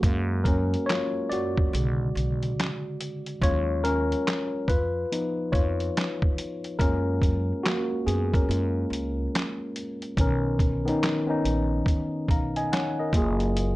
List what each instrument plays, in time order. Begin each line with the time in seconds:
Already playing: tine electric piano F#4
0.03 upright bass F#2, tine electric piano F#3 G#3 A#3, kick, closed hi-hat
0.44 tine electric piano C#4 A#4, kick, closed hi-hat
0.74 closed hi-hat
0.86 tine electric piano C#5, snare, closed hi-hat
0.90 tine electric piano F4, clap
1.29 upright bass F#2, tine electric piano F#4 D5, closed hi-hat
1.57 kick
1.73 upright bass B1, tine electric piano C#3 D3 G#3, closed hi-hat
2.15 upright bass B1, closed hi-hat
2.43 closed hi-hat
2.60 snare, clap, closed hi-hat
3.01 closed hi-hat
3.26 closed hi-hat
3.42 upright bass D#2, tine electric piano F#3 G#3 C#4 F4 C#5, kick, closed hi-hat
3.84 tine electric piano C#4 A#4, closed hi-hat
4.12 closed hi-hat
4.28 snare, clap, closed hi-hat
4.68 upright bass F2, tine electric piano F4 B4, kick, closed hi-hat
5.12 tine electric piano F3 B3 D#4, closed hi-hat
5.52 upright bass F2, tine electric piano F4 C#5, kick, closed hi-hat
5.80 closed hi-hat
5.97 snare, clap, closed hi-hat
6.22 kick
6.38 closed hi-hat
6.64 closed hi-hat
6.79 upright bass F#2, tine electric piano G#3 A#3 C#4 F4 A#4, kick, closed hi-hat
7.22 kick, closed hi-hat
7.63 tine electric piano A#3 F#4, snare, clap, closed hi-hat
8.06 upright bass F#2, tine electric piano B3 G#4, closed hi-hat
8.34 tine electric piano C#4 A#4, kick, closed hi-hat
8.49 upright bass F#2, tine electric piano G#3 A#3 F4, closed hi-hat
8.90 upright bass C#2, closed hi-hat
9.35 snare, clap, closed hi-hat
9.76 closed hi-hat
10.02 closed hi-hat
10.17 upright bass B1, tine electric piano D#3 B3 C#4, kick, closed hi-hat
10.21 tine electric piano A#4
10.59 kick, closed hi-hat
10.85 tine electric piano D#3 B3 C#4, closed hi-hat
10.89 tine electric piano D#4
11.03 snare, clap, closed hi-hat
11.26 tine electric piano D#3 B3 C#4
11.30 tine electric piano D#4
11.44 upright bass A#1, closed hi-hat
11.86 kick, closed hi-hat
12.28 upright bass B1, tine electric piano F5 A#5, kick, closed hi-hat
12.56 tine electric piano D#5 G#5, closed hi-hat
12.72 tine electric piano C#5 F#5, snare, clap, closed hi-hat
12.99 tine electric piano A#4 D#5
13.13 upright bass F#1, tine electric piano F#3 A#3 F4, kick, closed hi-hat
13.17 tine electric piano G#4
13.40 closed hi-hat
13.57 closed hi-hat